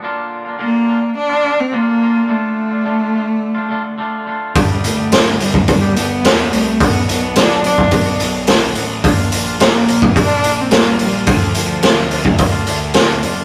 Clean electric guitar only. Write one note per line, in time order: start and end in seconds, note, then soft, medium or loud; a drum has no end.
0.02 0.57 A#2 medium
0.02 0.58 D3 medium
0.02 0.47 A#3 medium
0.02 0.46 D4 medium
0.02 0.44 F4 loud
0.45 0.58 A#3 medium
0.45 0.59 D4 medium
0.45 0.60 F4 medium
0.58 1.01 A#2 medium
0.58 0.85 D3 loud
0.58 0.74 A#3 medium
0.58 0.74 D4 medium
0.58 0.72 F4 loud
0.72 0.87 A#3 medium
0.72 0.88 D4 medium
0.72 0.89 F4 medium
0.87 1.02 D3 medium
0.87 1.01 A#3 medium
0.87 1.02 D4 medium
0.87 1.01 F4 medium
1.02 muted clean electric guitar stroke soft
1.29 1.43 A#3 medium
1.29 1.45 D4 medium
1.29 1.45 F4 medium
1.43 1.57 D3 medium
1.43 1.57 A#3 medium
1.43 1.58 D4 medium
1.43 1.56 F4 medium
1.57 muted clean electric guitar stroke soft
1.72 2.27 A#2 medium
1.72 1.99 D3 medium
1.72 2.00 A#3 medium
1.72 2.02 D4 medium
1.72 2.02 F4 medium
2.00 2.26 D3 medium
2.00 2.28 A#3 medium
2.00 2.29 D4 medium
2.00 2.29 F4 medium
2.28 2.83 D3 medium
2.28 2.72 A3 medium
2.28 2.72 D4 medium
2.28 2.69 F4 medium
2.71 2.84 A3 medium
2.71 2.85 D4 medium
2.71 2.86 F4 medium
2.84 3.12 D3 medium
2.84 3.00 A3 medium
2.84 3.00 D4 medium
2.84 2.98 F4 medium
2.99 3.13 A3 medium
2.99 3.14 D4 medium
2.99 3.15 F4 medium
3.13 3.56 D3 medium
3.13 3.27 A3 medium
3.13 3.27 D4 medium
3.13 3.26 F4 medium
3.27 muted clean electric guitar stroke soft
3.55 3.69 A3 medium
3.55 3.70 D4 medium
3.55 3.71 F4 medium
3.69 3.97 D3 medium
3.69 3.84 A3 medium
3.69 3.85 D4 medium
3.69 3.84 F4 medium
3.85 muted clean electric guitar stroke soft
3.98 4.24 D3 medium
3.98 4.26 A3 medium
3.98 4.27 D4 medium
3.98 4.28 F4 medium
4.25 4.53 D3 medium
4.25 4.54 A3 medium
4.25 4.56 D4 medium
4.25 4.54 F4 medium
4.54 5.10 G2 medium
4.54 5.10 D3 medium
4.54 4.99 G3 medium
4.54 4.99 B3 medium
4.54 4.98 D4 medium
4.54 4.96 G4 medium
4.97 5.11 G3 medium
4.97 5.12 B3 medium
4.97 5.13 D4 medium
4.97 5.13 G4 medium
5.11 5.53 G2 medium
5.11 5.54 D3 medium
5.11 5.26 G3 medium
5.11 5.26 D4 medium
5.11 5.24 G4 medium
5.25 5.38 G3 medium
5.25 5.40 B3 medium
5.25 5.41 D4 medium
5.25 5.41 G4 medium
5.39 5.54 G3 medium
5.39 5.54 B3 medium
5.39 5.54 D4 medium
5.39 5.54 G4 medium
5.55 muted clean electric guitar stroke soft
5.81 5.94 G3 medium
5.81 5.95 B3 medium
5.81 5.97 D4 medium
5.81 5.97 G4 medium
5.95 6.09 G3 medium
5.95 6.09 B3 medium
5.95 6.10 D4 medium
5.95 6.09 G4 medium
6.10 muted clean electric guitar stroke soft
6.23 6.78 G2 medium
6.23 6.78 D3 medium
6.23 6.51 G3 medium
6.23 6.52 B3 medium
6.23 6.54 D4 medium
6.23 6.54 G4 medium
6.52 6.78 G3 medium
6.52 6.79 B3 medium
6.52 6.82 D4 medium
6.52 6.80 G4 medium
6.81 7.34 B2 medium
6.81 7.35 F#3 medium
6.81 7.25 B3 medium
6.81 7.24 D4 medium
6.81 7.21 F#4 loud
7.22 7.36 B3 medium
7.22 7.38 D4 medium
7.22 7.37 F#4 medium
7.36 7.78 B2 medium
7.36 7.63 F#3 medium
7.36 7.51 B3 medium
7.36 7.51 D4 medium
7.36 7.48 F#4 loud
7.50 7.63 B3 medium
7.50 7.65 D4 medium
7.50 7.65 F#4 medium
7.64 7.78 F#3 medium
7.64 7.78 B3 medium
7.64 7.78 D4 medium
7.64 7.77 F#4 medium
8.06 8.19 B3 medium
8.06 8.21 D4 medium
8.06 8.21 F#4 medium
8.19 8.34 F#3 medium
8.19 8.34 B3 medium
8.19 8.35 D4 medium
8.19 8.33 F#4 medium
8.35 muted clean electric guitar stroke soft
8.47 9.01 B2 medium
8.47 8.73 F#3 medium
8.47 8.75 B3 medium
8.47 8.76 D4 loud
8.47 8.76 F#4 medium
8.74 9.01 F#3 medium
8.74 9.02 B3 medium
8.74 9.04 D4 medium
8.74 9.03 F#4 medium
9.02 9.56 A#2 medium
9.02 9.57 D3 medium
9.02 9.46 A#3 medium
9.02 9.45 D4 loud
9.02 9.43 F4 medium
9.44 9.58 A#3 medium
9.44 9.59 D4 medium
9.44 9.60 F4 medium
9.58 10.01 A#2 medium
9.58 9.85 D3 medium
9.58 9.74 A#3 medium
9.58 9.73 D4 loud
9.58 9.71 F4 medium
9.72 9.86 A#3 medium
9.72 9.87 D4 medium
9.72 9.88 F4 medium
9.86 10.00 D3 medium
9.86 10.00 A#3 medium
9.86 10.00 D4 medium
9.86 9.99 F4 medium
10.00 muted clean electric guitar stroke soft
10.28 10.43 A#3 medium
10.28 10.44 D4 medium
10.28 10.44 F4 medium
10.43 10.56 D3 medium
10.43 10.55 A#3 medium
10.43 10.56 D4 medium
10.43 10.55 F4 medium
10.57 muted clean electric guitar stroke soft
10.70 11.25 A#2 medium
10.70 10.96 D3 medium
10.70 10.98 A#3 medium
10.70 10.99 D4 medium
10.70 11.00 F4 medium
10.98 11.24 D3 medium
10.98 11.25 A#3 medium
10.98 11.27 D4 medium
10.98 11.26 F4 medium
11.26 11.80 D3 medium
11.26 11.70 A3 medium
11.26 11.68 D4 medium
11.26 11.67 F4 loud
11.68 11.81 A3 medium
11.68 11.82 D4 medium
11.68 11.82 F4 medium
11.81 12.08 D3 medium
11.81 11.96 A3 medium
11.81 11.95 D4 medium
11.81 11.93 F4 medium
11.95 12.09 A3 medium
11.95 12.10 D4 medium
11.95 12.11 F4 medium
12.09 12.52 D3 medium
12.09 12.23 A3 medium
12.09 12.23 D4 medium
12.09 12.22 F4 medium
12.23 muted clean electric guitar stroke soft
12.52 12.66 A3 medium
12.52 12.67 D4 medium
12.52 12.67 F4 medium
12.66 12.93 D3 medium
12.66 12.81 A3 medium
12.66 12.80 D4 medium
12.66 12.80 F4 medium
12.82 muted clean electric guitar stroke soft
12.94 13.21 D3 medium
12.94 13.22 A3 medium
12.94 13.23 D4 medium
12.94 13.23 F4 loud
13.22 13.45 D3 medium
13.22 13.45 A3 medium
13.22 13.45 D4 medium
13.22 13.45 F4 medium